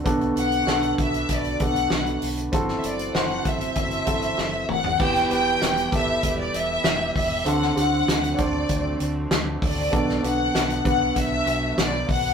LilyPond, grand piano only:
<<
  \new Staff \with { instrumentName = "Grand piano" } { \time 4/4 \key e \minor \tempo 4 = 97 <b d' fis' a'>4 <b d' fis' a'>4 r8 <b d' fis' a'>4 r8 | <c' e' fis' a'>4 <c' e' fis' c''>4 r8 <c' e' fis' a'>4 r8 | <b e' g' b'>8 <b e' g' b'>4 <b e' g' a'>4. r4 | <c' d' fis' a'>8 <c' d' fis' a'>4 <c' d' fis' c''>4. r4 |
<b d' fis' a'>8 <b d' fis' b'>4 <b d' fis' b'>4. r4 | }
  \new Staff \with { instrumentName = "Grand piano" } { \clef bass \time 4/4 \key e \minor b,4. r2 r8 | r1 | e4. r2 r8 | d4. r2 r8 |
b,4. r2 r8 | }
>>